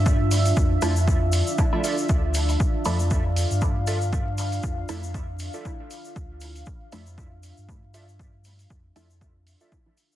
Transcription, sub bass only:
X:1
M:4/4
L:1/16
Q:"Swing 16ths" 1/4=118
K:Dm
V:1 name="Sub bass" clef=bass
G,,4 F,,2 F,,4- F,, z4 z | D,,4 z2 F,,4- F,, G,,4- G,,- | G,,4 F,,2 F,,4- F,, z4 z | D,,4 z2 F,,4- F,, G,,4- G,,- |
G,,4 F,,2 F,,4- F,, z4 z |]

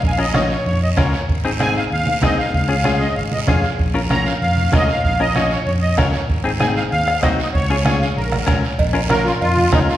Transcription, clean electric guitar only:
X:1
M:4/4
L:1/8
Q:1/4=192
K:Bbm
V:1 name="Clean electric guitar"
z [DFB] [DFd] z3 [DFB] z | z [CEA] [CEA] z3 [CEA] z | z [DFA] [DFA] z3 [DFA] z | z [DFB] [DFB] z3 [DFB] z |
z [DFB] [DFd] z3 [DFB] z | z [CEA] [CEA] z3 [CEG] z | z [DFA] [DFA] z3 [DFB] z | z [DFB] [DFB] z3 [DFB] z |]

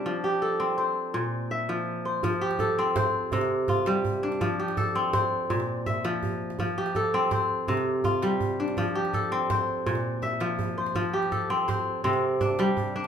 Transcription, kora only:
X:1
M:12/8
L:1/8
Q:3/8=110
K:F
V:1 name="Kora"
D G A2 c3 z e3 c- | c G A2 c3 z F3 D- | D G A2 c3 z e3 z | z G A2 c3 z F3 D- |
D G A2 c3 z e3 c- | c G A2 c2 C2 D3 D |]
V:2 name="Kora" clef=bass
F,2 z C2 z B,,2 z F,2 z | F,2 z C2 z C,2 z G,2 z | F,2 z C2 z B,,2 z F,2 z | F,2 z C2 z C,2 z G,2 z |
F,2 z C2 z B,,2 z F,2 z | F,2 z C2 z C,2 z G,2 z |]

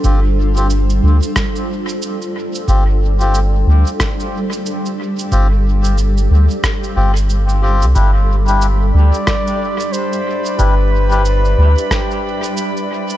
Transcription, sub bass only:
X:1
M:4/4
L:1/16
Q:"Swing 16ths" 1/4=91
K:Gmix
V:1 name="Sub bass" clef=bass
G,,,6 D,, z8 z | G,,,6 D,, z8 z | G,,,6 D,, z3 G,,,4- G,,, C,, | G,,,6 D,, z8 z |
G,,,6 D,, z8 z |]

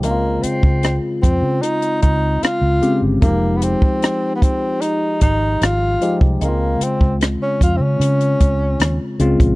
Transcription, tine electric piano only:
X:1
M:4/4
L:1/8
Q:1/4=75
K:Dblyd
V:1 name="Tine electric piano"
[D,A,C=EF]3 z4 [D,A,CG] | [F,A,EG]3 z4 [F,A,EG] | [D,A,CEF]3 z4 [D,A,CF] |]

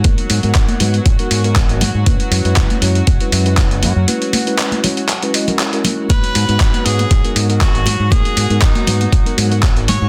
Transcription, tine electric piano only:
X:1
M:4/4
L:1/16
Q:"Swing 16ths" 1/4=119
K:G#m
V:1 name="Tine electric piano"
[G,B,DFA]3 [G,B,DFA]3 [G,B,DFB]2 z [G,B,DFA]2 [G,B,DFA]2 [G,B,DFA] z2 | [G,CEFB]3 [G,CEFB]3 [G,CEFc]2 z [G,CEFB]2 [G,CEFB]2 [G,CEFB] z2 | [G,CEFB]3 [G,CEFB]3 [G,CEFc]2 z [G,CEFB] [G,CEFd] [G,CEFA]2 [G,CEFA]3 | B,3 [G,B,DFB]3 [G,B,DFB]2 z [G,B,DFA]2 [G,B,DFA]2 [G,B,DFA] z2 |
[G,B,DFA]3 [G,B,DFA]3 [G,B,DFB]2 z [G,B,DFA]2 [G,B,DFA]2 [G,B,DFA] z2 |]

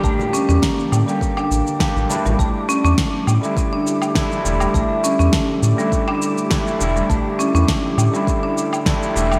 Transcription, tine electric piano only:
X:1
M:4/4
L:1/16
Q:"Swing 16ths" 1/4=102
K:none
V:1 name="Tine electric piano"
[D,G,G]6- [D,G,G] [D,G,_B,G]4- [D,G,B,G] [G,B,DG]2 [G,A,DE]2- | [G,A,DE]2 z4 z [D,G,A,E]4- [D,G,A,E] [G,A,DE]2 [D,G,A,E]2- | [D,G,A,E]6- [D,G,A,E] [D,G,A,E]4- [D,G,A,E] [G,A,DE]2 [D,G,A,E]2- | [D,G,A,E]6- [D,G,A,E] [D,G,A,E]4- [D,G,A,E] [G,A,DE]2 [D,G,A,E]2 |]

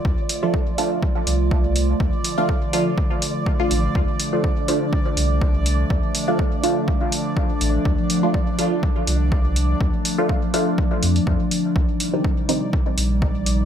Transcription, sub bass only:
X:1
M:4/4
L:1/8
Q:"Swing 16ths" 1/4=123
K:Dphr
V:1 name="Sub bass" clef=bass
D,, z4 C,,3 | D,, z6 A,,, | D,, z4 C,,3 | D,, z6 A,,, |
D,, z4 C,,3 | D,, z4 F,, F,, z | C,, z4 B,,,3 |]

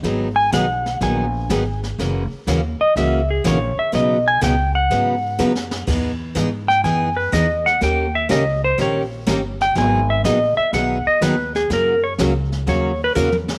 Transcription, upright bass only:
X:1
M:4/4
L:1/8
Q:"Swing" 1/4=124
K:G#m
V:1 name="Upright bass" clef=bass
G,,,2 B,,,2 A,,,2 G,,,2 | F,,, z D,, z C,,2 A,,, z | B,,,2 C,,2 G,,2 F,,2 | E,,2 G,,2 F,,2 E,,2 |
D,,2 C,,2 A,,,2 =G,,,2 | G,,,2 A,,, z B,,, z D,,2 | F,,2 C,,2 D,,2 E,,2 |]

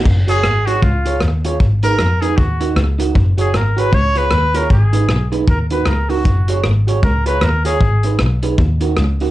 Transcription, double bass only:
X:1
M:4/4
L:1/8
Q:"Swing" 1/4=155
K:F#
V:1 name="Double bass" clef=bass
F,,,2 G,,,2 C,,2 D,,2 | G,,,2 E,,2 D,,2 C,,2 | F,,,2 G,,,2 C,,2 D,,2 | G,,,2 B,,,2 D,,2 C,,2 |
F,,,2 G,,,2 C,,2 D,,2 | G,,,2 B,,,2 D,,2 C,,2 |]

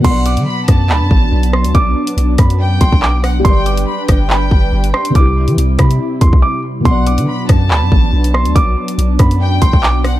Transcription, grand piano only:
X:1
M:4/4
L:1/8
Q:1/4=141
K:Bphr
V:1 name="Grand piano"
c' d'3 b3 c' | d'3 b2 c' d' z | c' d'3 b3 c' | d'3 b2 c' d' z |
c' d'3 b3 c' | d'3 b2 c' d' z |]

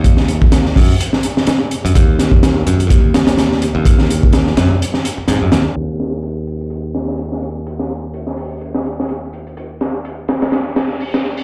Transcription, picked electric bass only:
X:1
M:4/4
L:1/16
Q:"Swing 16ths" 1/4=126
K:Ebm
V:1 name="Picked electric bass" clef=bass
E,,6 G,, z8 G,, | E,,6 G,,2 E,,6- E,, E,,- | E,,6 G,, z4 z A,, G,, E,, z | E,,16- |
E,,16- | E,,16 |]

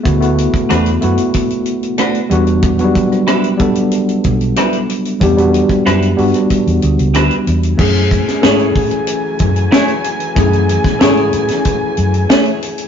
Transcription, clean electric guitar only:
X:1
M:4/4
L:1/8
Q:1/4=93
K:F#m
V:1 name="Clean electric guitar"
z2 [A,DFB] z3 [A,DFB] z | z2 [=G,DEB] z3 [G,DEB] z | z2 [=G,DEB] z3 [G,DEB] z | z2 [A,EGc] z3 [A,EGc] z |
z2 [A,EGc] z3 [A,EGc] z |]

